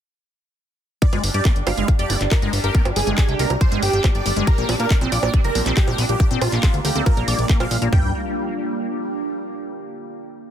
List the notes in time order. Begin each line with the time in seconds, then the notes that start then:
1.02 G3 D4 D5, kick, closed hi-hat
1.13 G1 G#3, closed hi-hat, high bongo
1.20 G5
1.24 G1, open hi-hat
1.34 G2 G4 D5, closed hi-hat
1.45 G#3, kick, clap, closed hi-hat
1.50 G4
1.56 G1, closed hi-hat
1.67 G1 G3 F5, open hi-hat, high bongo
1.77 G1 G#3, closed hi-hat
1.88 kick, closed hi-hat
1.99 F1 G4 D5, closed hi-hat
2.10 G1 G#3, open hi-hat
2.21 G1, clap, closed hi-hat
2.31 G3 A#4, kick, clap, closed hi-hat, high bongo
2.36 D6
2.42 G1 G#3, closed hi-hat
2.53 G1, open hi-hat
2.64 G1 G4 A#4, closed hi-hat
2.75 G#3, kick, closed hi-hat
2.85 G1, closed hi-hat, high bongo
2.96 G1 G3 G#4, open hi-hat
3.07 G1 G#3, closed hi-hat
3.18 G#4, kick, clap, closed hi-hat
3.29 C2 G4, closed hi-hat
3.39 C2 G#3 A#4, open hi-hat
3.50 C2, closed hi-hat, high bongo
3.61 G3 C5, kick, closed hi-hat
3.72 G1 G#3, closed hi-hat
3.82 G1 G4, open hi-hat
3.93 G1 G4, closed hi-hat
4.04 G#3, kick, clap, closed hi-hat, high bongo
4.15 G1 D5, closed hi-hat
4.26 G1 G3, open hi-hat
4.36 G1 G#3, closed hi-hat
4.47 A#3 A#4, kick, closed hi-hat
4.58 A#1 A#3, closed hi-hat
4.69 A#1 C4, open hi-hat, high bongo
4.80 A#2 A#4 F5, closed hi-hat
4.89 A#3 F4, kick, clap, closed hi-hat
5.01 A#1 C4, closed hi-hat
5.12 A#1 A#3 D5, open hi-hat
5.23 A#1 A#3, closed hi-hat, high bongo
5.34 C4, kick, closed hi-hat
5.44 F1 A#4, closed hi-hat
5.55 A#1 A#3 C4 A#5, open hi-hat
5.66 A#1 C4, clap, closed hi-hat
5.77 G4, kick, clap, closed hi-hat
5.88 A#1 A#3, closed hi-hat, high bongo
5.98 A#1 C4, open hi-hat
6.09 A#1 G4, closed hi-hat
6.20 A#3, kick, closed hi-hat
6.31 A#1 C4, closed hi-hat
6.42 A#1 F4, open hi-hat, high bongo
6.52 A#1 A#3, clap, closed hi-hat
6.63 C4 F4, kick, clap, closed hi-hat
6.74 D2, closed hi-hat
6.85 D2 A#3 G4, open hi-hat
6.95 D2 A#3 C4, closed hi-hat
7.06 A#4, kick, closed hi-hat, high bongo
7.17 A#1 A#3, closed hi-hat
7.28 A#1 A#3 D5, open hi-hat
7.39 A#1, closed hi-hat
7.49 A#3, kick, clap, closed hi-hat
7.60 A#1 A#3 F5, closed hi-hat, high bongo
7.71 A#1, open hi-hat
7.82 A#1 A#3, closed hi-hat
7.93 G1 G3 D4 G5, kick, floor tom
7.99 G4
8.06 G5
8.12 D6